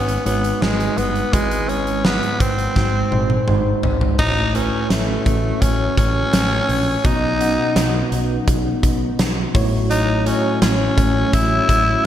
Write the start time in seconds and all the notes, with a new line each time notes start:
Already playing: G#1 G#2 G#3 B3 D#4 F#4 B4
0.08 closed hi-hat
0.25 G#1 G#3 B3 D#4 F#4 C#5, closed hi-hat
0.44 closed hi-hat
0.61 G#1 G#3 D#4 F#4 B4, snare
0.80 closed hi-hat
0.97 G1 B3, closed hi-hat
1.15 closed hi-hat
1.33 G#1 G#2 G#3 E4 F#4 B4, kick, closed hi-hat
1.51 closed hi-hat
1.69 C#4, closed hi-hat
1.87 closed hi-hat
2.05 B3, snare
2.23 closed hi-hat
2.40 G#1 C4, kick, closed hi-hat
2.58 closed hi-hat
2.75 G#1 G#2 G#3 D#4 F#4 C5, kick, snare
3.11 G#1 G#3 D#4 F#4 C5, high tom
3.30 high tom
3.47 G#1 G#3 D#4 F#4 C5, mid tom
3.83 G#1, floor tom
4.01 floor tom
4.19 A1 A2 F#3 A3 C#4 D#4 C#5, kick, crash
4.54 A3 C#4 E4 F#4 B4, closed hi-hat
4.62 C#5
4.90 A1 A3, snare, closed hi-hat
5.26 A1, kick, closed hi-hat
5.62 A1 C#4, kick, closed hi-hat
5.97 A1 C#4, kick, closed hi-hat
6.33 A1, snare, closed hi-hat
6.69 A#1, open hi-hat
7.04 B1 B2 B3 D#4 F#4 D#5, kick, closed hi-hat
7.40 B3 C#4 F#4 F#5, closed hi-hat
7.47 D#4
7.76 B1, snare, closed hi-hat
8.12 B1, closed hi-hat
8.48 B1, kick, closed hi-hat
8.83 B1, kick, closed hi-hat
9.19 B1, snare, closed hi-hat
9.54 A1 A2 A3 C#4 E4 F#4 C#5, kick, open hi-hat
9.90 D#4, closed hi-hat
10.26 A3 C#4 E4 F#4 C#5, closed hi-hat
10.62 A1 C#4, snare, closed hi-hat
10.98 A1, kick, closed hi-hat
11.33 A1 E4, kick, closed hi-hat
11.69 A1, kick, closed hi-hat